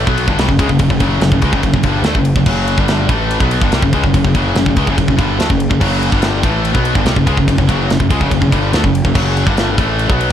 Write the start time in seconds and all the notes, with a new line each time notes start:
0.06 B1 B2 F#3 B3, kick
0.18 ride
0.26 G1 G2 D3, kick
0.36 C2 C3 G3, snare, ride
0.49 F#1 F#2 C#3, kick
0.59 C#2 C#3 G#3, kick, ride
0.69 F#1 F#2 C#3, kick
0.79 F#1 F#2 C#3, kick, ride
0.90 F#1 F#2 C#3, kick
0.99 F#1 F#2 C#3 F#3, kick, ride
1.20 F#1 F#2 C#3, snare, ride
1.31 F#1 F#2 C#3, kick
1.42 C#2 C#3 G#3, kick, ride
1.53 F#1 F#2 C#3, kick
1.63 F#1 F#2 C#3, kick, ride
1.73 F#1 F#2 C#3, kick
1.83 G1 G2 D3, kick, ride
1.88 G3
2.02 D2 D3, snare, ride
2.06 A3
2.15 F#1 F#2 C#3, kick
2.25 ride
2.35 F#1 F#2 C#3, kick
2.46 F#1 F#2 C#3 F#3, kick, crash
2.68 ride
2.77 G1 G2 D3 G3, kick
2.88 snare, ride
3.08 A1 A2 E3 A3, kick, ride
3.31 ride
3.40 B1 B2 F#3 B3, kick
3.51 ride
3.61 G1 G2 D3, kick
3.71 C2 C3 G3, snare, ride
3.82 F#1 F#2 C#3, kick
3.93 C#2 C#3 G#3, kick, ride
4.04 F#1 F#2 C#3, kick
4.14 F#1 F#2 C#3, kick, ride
4.24 F#1 F#2 C#3, kick
4.35 F#1 F#2 C#3 F#3, kick, ride
4.55 F#1 F#2 C#3, snare, ride
4.66 F#1 F#2 C#3, kick
4.76 C#2 C#3 G#3, kick, ride
4.87 F#1 F#2 C#3, kick
4.97 F#1 F#2 C#3, kick, ride
5.08 F#1 F#2 C#3, kick
5.18 G1 G2 D3 G3, kick, ride
5.39 D2 D3 A3, snare, ride
5.49 F#1 F#2 C#3, kick
5.60 ride
5.69 F#1 F#2 C#3, kick
5.81 F#1 F#2 C#3 F#3, kick, crash
6.03 ride
6.11 G1 G2 D3 G3, kick
6.22 snare, ride
6.43 A1 A2 E3 A3, kick, ride
6.65 ride
6.75 B1 B2 F#3 B3, kick
6.85 ride
6.95 G1 G2 D3, kick
7.05 C2 C3 G3, snare, ride
7.16 F#1 F#2 C#3, kick
7.26 C#2 C#3 G#3, kick, ride
7.37 F#1 F#2 C#3, kick
7.47 F#1 F#2 C#3, kick, ride
7.58 F#1 F#2 C#3, kick
7.67 F#1 F#2 C#3 F#3, kick, ride
7.88 F#1 F#2 C#3, snare, ride
7.99 F#1 F#2 C#3, kick
8.09 C#2 C#3 G#3, kick, ride
8.20 F#1 F#2 C#3, kick
8.31 F#1 F#2 C#3, kick, ride
8.41 F#1 F#2 C#3, kick
8.52 G1 G2 D3 G3, kick, ride
8.72 D2 D3 A3, snare, ride
8.83 F#1 F#2 C#3, kick
8.95 ride
9.04 F#1 F#2 C#3, kick
9.14 F#1 F#2 C#3 F#3, kick, crash
9.37 ride
9.46 G1 G2 D3 G3, kick
9.57 snare, ride
9.77 A1 A2 E3 A3, kick, ride
9.99 ride
10.08 B1 B2 F#3 B3, kick
10.21 ride
10.29 G2